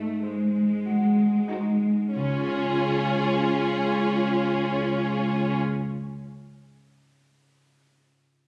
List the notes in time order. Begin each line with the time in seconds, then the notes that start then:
Already playing: G#2 A3 C4 D#4
0.23 G#3 C5
0.85 F#4
1.51 D#4 F#4 C5
2.15 C#2 C#3 C#4 F4 G#4 C#5
2.22 C#4
2.29 F4
2.36 G#4
2.43 F5